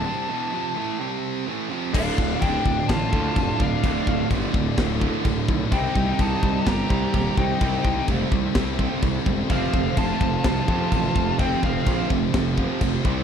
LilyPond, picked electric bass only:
\new Staff \with { instrumentName = "Picked electric bass" } { \clef bass \time 4/4 \key d \phrygian \tempo 4 = 127 r1 | d,,8 d,,8 d,,8 d,,8 a,,8 d,8 f,,8 d,,8 | d,,8 d,,8 g,,8 d,,8 d,,4 d,,8 b,,8 | c,8 c,8 c,8 c,8 g,,8 c,8 ees,,8 c,8 |
c,8 c,8 f,,8 c,8 c,4 c,8 e,,8 | f,,8 f,,8 f,,8 f,,8 c,8 f,8 a,,8 f,,8 | f,,8 f,,8 bes,,8 f,,8 f,,4 f,,8 c,8 | }